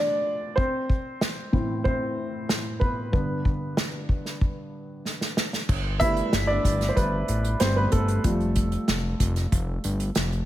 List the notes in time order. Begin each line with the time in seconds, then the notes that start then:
Already playing: F3 A3 C4 D4 D5
0.56 C4 C5, kick
0.90 kick
1.21 snare
1.53 A2 E3 C4, kick
1.84 C4 C5, kick
2.49 snare
2.80 B3 B4, kick
3.12 G2 D3 B3, kick
3.45 kick
3.77 snare
4.09 kick
4.26 snare
4.41 kick
5.05 snare
5.21 snare
5.37 snare
5.53 snare
5.69 G1, kick, crash
6.00 G3 A3 B3 E4 E5, kick, closed hi-hat
6.17 closed hi-hat
6.33 G1, snare, closed hi-hat
6.47 D4 D5
6.65 G1, kick, closed hi-hat
6.81 snare, closed hi-hat
6.89 C5
6.96 G1 B3 B4, kick, closed hi-hat
7.28 A1, closed hi-hat
7.45 closed hi-hat
7.60 G1 G3 A3 B3 C4 C5, snare, closed hi-hat
7.76 B3 B4
7.92 G1 A3 A4, kick, closed hi-hat
8.08 closed hi-hat
8.24 F1 F3 G3 A3, kick, closed hi-hat
8.40 closed hi-hat
8.56 kick, closed hi-hat
8.72 closed hi-hat
8.88 F1, snare, closed hi-hat
9.20 F1, kick, closed hi-hat
9.36 snare, closed hi-hat
9.52 F1, kick, closed hi-hat
9.84 G1, closed hi-hat
10.00 closed hi-hat
10.15 F1, snare, closed hi-hat
10.32 closed hi-hat